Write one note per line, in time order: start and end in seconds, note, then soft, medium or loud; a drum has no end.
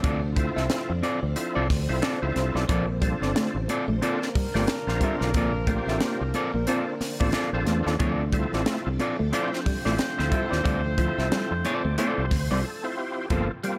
0.00 0.48 D2 loud
0.00 2.65 F3 medium
0.00 5.30 C4 medium
0.00 0.19 C4 medium
0.00 2.65 D4 medium
0.00 0.20 F4 medium
0.00 7.96 C5 medium
0.00 kick loud
0.00 closed hi-hat medium
0.04 0.20 A4 medium
0.04 0.20 D5 medium
0.36 0.92 C4 medium
0.36 0.92 E4 medium
0.36 0.92 F4 medium
0.36 0.93 A4 medium
0.36 muted clean electric guitar stroke soft
0.36 kick medium
0.36 closed hi-hat medium
0.56 0.68 C2 medium
0.56 0.66 C4 medium
0.56 0.65 F4 medium
0.56 0.65 A4 medium
0.56 0.65 E5 medium
0.56 snare soft
0.70 snare loud
0.70 closed hi-hat medium
0.89 1.01 F2 medium
0.89 muted clean electric guitar stroke soft
1.03 1.19 C4 medium
1.03 1.19 F4 medium
1.03 1.19 A4 medium
1.03 1.19 D5 loud
1.03 closed hi-hat medium
1.23 1.34 D2 medium
1.23 muted clean electric guitar stroke soft
1.36 1.64 C4 medium
1.36 1.64 E4 medium
1.36 1.65 F4 medium
1.36 1.64 A4 medium
1.36 muted clean electric guitar stroke soft
1.36 closed hi-hat medium
1.55 1.67 C2 medium
1.55 1.67 C4 medium
1.55 1.67 F4 medium
1.55 1.67 A4 medium
1.55 1.66 D5 medium
1.70 1.86 D2 medium
1.70 muted clean electric guitar stroke soft
1.70 kick medium
1.70 snare soft
1.70 open hi-hat medium
1.89 2.00 C2 medium
1.89 2.04 C4 medium
1.89 2.04 E4 medium
1.89 2.04 F4 medium
1.89 2.04 A4 loud
1.89 muted clean electric guitar stroke medium
2.02 2.18 C4 medium
2.02 2.18 F4 medium
2.02 2.18 A4 medium
2.02 2.19 D5 medium
2.02 snare loud
2.02 closed hi-hat medium
2.22 2.34 C#2 medium
2.22 2.64 C4 loud
2.22 2.65 E4 medium
2.22 2.65 F4 medium
2.22 2.65 A4 loud
2.36 2.52 C2 medium
2.36 muted clean electric guitar stroke soft
2.36 snare soft
2.36 closed hi-hat medium
2.55 2.66 B1 medium
2.55 2.64 C4 soft
2.55 2.64 F4 soft
2.55 2.64 A4 medium
2.55 2.64 D5 medium
2.55 snare soft
2.69 3.13 A#1 loud
2.69 7.96 D3 medium
2.69 2.80 F3 medium
2.69 7.96 A#3 medium
2.69 2.85 C4 medium
2.69 2.85 F4 medium
2.69 2.85 A4 medium
2.69 2.85 D5 loud
2.69 kick loud
2.69 closed hi-hat medium
3.01 3.13 G3 medium
3.01 3.58 C4 medium
3.01 3.58 D4 medium
3.01 3.58 F4 medium
3.01 3.58 A4 medium
3.01 muted clean electric guitar stroke soft
3.01 kick medium
3.01 closed hi-hat medium
3.22 3.33 G1 medium
3.22 3.31 C4 soft
3.22 3.31 F4 soft
3.22 3.31 A4 medium
3.22 3.31 D5 medium
3.22 muted clean electric guitar stroke soft
3.22 snare soft
3.35 3.46 A3 medium
3.35 snare loud
3.35 closed hi-hat medium
3.55 3.66 A1 medium
3.55 muted clean electric guitar stroke soft
3.68 3.85 C4 medium
3.68 3.85 F4 medium
3.68 3.85 A4 medium
3.68 3.85 D5 loud
3.68 muted clean electric guitar stroke soft
3.68 closed hi-hat medium
3.88 3.99 A#1 medium
3.88 3.96 A3 medium
4.01 7.63 F3 medium
4.01 7.63 A#3 medium
4.01 4.29 C4 medium
4.01 4.18 C4 medium
4.01 7.63 D4 medium
4.01 4.30 D4 medium
4.01 4.30 F4 medium
4.01 4.18 F4 loud
4.01 4.30 A4 medium
4.01 4.18 A4 loud
4.01 7.63 A#4 medium
4.01 4.18 D5 loud
4.01 muted clean electric guitar stroke soft
4.01 closed hi-hat medium
4.22 snare soft
4.35 4.46 G3 medium
4.35 muted fingered electric bass stroke medium
4.35 muted clean electric guitar stroke soft
4.35 kick loud
4.35 open hi-hat medium
4.54 4.66 G1 medium
4.54 4.62 A3 medium
4.54 4.69 C4 medium
4.54 4.64 C4 medium
4.54 4.69 D4 medium
4.54 4.69 F4 medium
4.54 4.64 F4 medium
4.54 4.69 G4 loud
4.54 4.64 A4 medium
4.54 4.64 D5 medium
4.54 snare soft
4.67 muted fingered electric bass stroke soft
4.67 muted clean electric guitar stroke soft
4.67 snare loud
4.67 closed hi-hat medium
4.87 4.99 A#1 medium
4.87 5.30 C4 loud
4.87 5.30 D4 medium
4.87 5.30 F4 loud
4.87 5.30 A#4 loud
4.87 muted clean electric guitar stroke soft
4.87 snare soft
5.00 5.12 G3 medium
5.00 5.14 C4 medium
5.00 5.15 F4 medium
5.00 5.15 A4 medium
5.00 5.15 E5 medium
5.00 kick medium
5.00 closed hi-hat medium
5.21 5.35 B1 loud
5.21 5.31 C4 soft
5.21 5.31 F4 medium
5.21 5.31 A4 medium
5.21 5.31 D5 medium
5.21 snare soft
5.34 5.79 A#1 medium
5.34 5.46 A#3 medium
5.34 5.51 C4 medium
5.34 7.98 D4 medium
5.34 5.51 F4 loud
5.34 5.51 A4 medium
5.34 5.52 D5 loud
5.34 kick loud
5.34 closed hi-hat medium
5.55 muted clean electric guitar stroke soft
5.67 5.79 A3 medium
5.67 6.23 C4 medium
5.67 6.23 D4 medium
5.67 6.23 F4 medium
5.67 6.24 G4 loud
5.67 muted clean electric guitar stroke soft
5.67 kick medium
5.67 closed hi-hat medium
5.87 5.98 A1 medium
5.87 5.97 C4 medium
5.87 5.97 F4 medium
5.87 5.97 A4 medium
5.87 5.96 E5 medium
5.87 snare soft
6.00 6.13 A#3 medium
6.00 snare loud
6.00 closed hi-hat loud
6.21 6.32 C2 medium
6.21 muted clean electric guitar stroke medium
6.34 6.50 C4 medium
6.34 6.50 F4 medium
6.34 6.51 A4 loud
6.34 6.51 D5 loud
6.34 muted clean electric guitar stroke soft
6.34 closed hi-hat medium
6.54 6.65 A#1 medium
6.54 6.61 A#3 medium
6.54 muted clean electric guitar stroke soft
6.67 6.95 C4 medium
6.67 6.79 C4 medium
6.67 6.83 C4 medium
6.67 6.95 D4 medium
6.67 6.95 F4 medium
6.67 6.84 F4 medium
6.67 6.95 A4 medium
6.67 6.84 A4 medium
6.67 6.84 D5 medium
6.67 closed hi-hat medium
7.00 muted fingered electric bass stroke soft
7.00 muted clean electric guitar stroke soft
7.00 snare soft
7.00 open hi-hat medium
7.20 7.32 A1 medium
7.20 7.28 A#3 medium
7.20 7.35 C4 medium
7.20 7.29 C4 medium
7.20 7.35 D4 medium
7.20 7.35 F4 medium
7.20 7.29 F4 medium
7.20 7.35 A4 medium
7.20 7.29 A4 medium
7.20 7.28 D5 medium
7.20 kick medium
7.32 7.49 C4 medium
7.32 7.49 F4 loud
7.32 7.50 A4 loud
7.32 7.50 D5 loud
7.32 snare loud
7.32 closed hi-hat medium
7.53 7.64 A#1 medium
7.53 7.95 C4 loud
7.53 7.96 D4 loud
7.53 7.96 F4 medium
7.53 7.96 A4 loud
7.66 7.83 E2 medium
7.66 7.78 A3 medium
7.66 muted clean electric guitar stroke soft
7.66 snare soft
7.66 closed hi-hat medium
7.86 7.98 D#2 medium
7.86 7.95 C4 medium
7.86 7.95 F4 medium
7.86 7.95 A4 medium
7.86 7.95 D5 medium
7.86 snare soft
7.99 8.44 D2 medium
7.99 8.11 F3 medium
7.99 13.27 F3 medium
7.99 8.22 C4 medium
7.99 13.27 C4 medium
7.99 13.27 D4 medium
7.99 8.22 F4 medium
7.99 13.27 A4 medium
7.99 8.23 A4 medium
7.99 8.23 D5 loud
7.99 kick loud
7.99 closed hi-hat medium
8.33 8.45 G3 medium
8.33 8.89 C4 medium
8.33 8.89 E4 medium
8.33 8.89 F4 medium
8.33 8.89 A4 loud
8.33 muted clean electric guitar stroke soft
8.33 kick medium
8.33 closed hi-hat medium
8.52 8.64 A1 medium
8.52 8.62 C4 medium
8.52 8.62 F4 medium
8.52 8.62 A4 medium
8.52 8.62 D5 medium
8.52 muted clean electric guitar stroke soft
8.52 snare soft
8.66 8.77 A3 medium
8.66 snare loud
8.66 closed hi-hat loud
8.87 8.97 C2 medium
8.87 muted clean electric guitar stroke medium
8.99 9.15 C4 medium
8.99 9.16 F4 loud
8.99 9.16 A4 medium
8.99 9.16 D5 loud
8.99 muted clean electric guitar stroke soft
8.99 closed hi-hat medium
9.19 9.31 D2 medium
9.19 9.27 A3 medium
9.19 muted clean electric guitar stroke soft
9.32 12.93 A3 medium
9.32 12.93 C4 medium
9.32 9.48 C4 medium
9.32 9.61 C4 medium
9.32 9.61 E4 medium
9.32 12.93 F4 medium
9.32 9.61 F4 medium
9.32 9.49 F4 loud
9.32 9.49 A4 loud
9.32 12.93 C5 medium
9.32 9.61 C5 medium
9.32 9.49 D5 loud
9.32 muted clean electric guitar stroke soft
9.32 closed hi-hat medium
9.53 snare soft
9.65 9.77 G3 medium
9.65 muted clean electric guitar stroke soft
9.65 muted fingered electric bass stroke medium
9.65 kick medium
9.65 open hi-hat medium
9.85 9.97 A1 medium
9.85 9.93 A3 medium
9.85 10.00 C4 medium
9.85 9.94 C4 medium
9.85 10.00 E4 medium
9.85 10.00 F4 medium
9.85 9.94 F4 medium
9.85 9.94 A4 medium
9.85 10.00 A4 medium
9.85 9.94 D5 medium
9.85 snare soft
9.98 muted clean electric guitar stroke soft
9.98 muted fingered electric bass stroke soft
9.98 snare loud
9.98 closed hi-hat loud
10.18 10.30 D2 medium
10.18 10.61 C4 loud
10.18 10.61 E4 medium
10.18 10.61 F4 loud
10.18 10.61 A4 loud
10.18 muted clean electric guitar stroke soft
10.18 snare soft
10.31 10.44 G3 medium
10.31 10.44 C4 medium
10.31 10.44 F4 medium
10.31 10.44 A4 medium
10.31 10.45 E5 medium
10.31 kick medium
10.31 closed hi-hat medium
10.51 10.63 D#2 medium
10.51 10.60 C4 soft
10.51 10.60 F4 medium
10.51 10.60 A4 medium
10.51 10.60 D5 medium
10.51 snare soft
10.63 11.10 D2 loud
10.63 10.77 G3 medium
10.63 10.80 C4 loud
10.63 10.81 F4 loud
10.63 10.81 A4 loud
10.63 10.81 D5 medium
10.63 kick loud
10.63 closed hi-hat medium
10.86 muted clean electric guitar stroke soft
10.98 11.10 F3 medium
10.98 11.54 C4 medium
10.98 11.54 E4 medium
10.98 11.54 F4 medium
10.98 11.54 A4 loud
10.98 muted clean electric guitar stroke soft
10.98 kick medium
10.98 closed hi-hat medium
11.18 11.29 C2 medium
11.18 11.27 C4 soft
11.18 11.27 F4 soft
11.18 11.27 A4 soft
11.18 11.27 E5 medium
11.18 snare soft
11.32 11.43 G3 medium
11.32 snare loud
11.32 closed hi-hat medium
11.51 11.62 F2 medium
11.51 muted clean electric guitar stroke soft
11.64 11.87 C4 medium
11.64 11.85 F4 medium
11.64 11.84 A4 loud
11.64 11.96 D5 medium
11.64 11.84 D5 loud
11.64 muted clean electric guitar stroke soft
11.64 closed hi-hat medium
11.85 11.96 D2 medium
11.85 11.92 A3 medium
11.85 muted clean electric guitar stroke soft
11.98 12.09 A3 medium
11.98 12.21 C4 loud
11.98 12.26 C4 medium
11.98 12.26 E4 medium
11.98 12.21 F4 medium
11.98 12.26 F4 medium
11.98 12.21 A4 loud
11.98 12.26 A4 medium
11.98 12.50 C5 medium
11.98 12.21 D5 loud
11.98 closed hi-hat medium
12.18 12.29 C2 medium
12.31 12.48 D2 medium
12.31 muted clean electric guitar stroke soft
12.31 kick medium
12.31 snare soft
12.31 open hi-hat medium
12.50 12.62 C2 medium
12.50 12.59 G3 medium
12.50 12.65 C4 medium
12.50 12.60 C4 medium
12.50 12.66 E4 medium
12.50 12.66 F4 medium
12.50 12.60 F4 medium
12.50 12.60 A4 medium
12.50 12.66 C5 medium
12.50 12.59 D5 medium
12.64 12.95 A4 medium
12.84 13.26 C4 loud
12.84 13.26 E4 loud
12.84 13.26 F4 medium
12.84 13.26 C5 loud
12.98 13.29 G4 medium
13.30 13.47 G1 loud
13.30 13.42 F3 medium
13.30 13.46 A#3 medium
13.30 13.51 A#3 medium
13.30 13.52 C4 medium
13.30 13.52 F4 medium
13.30 13.47 F4 medium
13.30 13.47 A4 medium
13.30 13.52 A4 loud
13.30 13.47 C5 medium
13.30 kick loud
13.30 closed hi-hat medium
13.63 13.75 G3 medium
13.63 13.78 A#3 medium
13.63 13.78 C4 medium
13.63 13.78 F4 medium
13.63 13.78 G4 medium
13.63 muted clean electric guitar stroke soft
13.63 closed hi-hat medium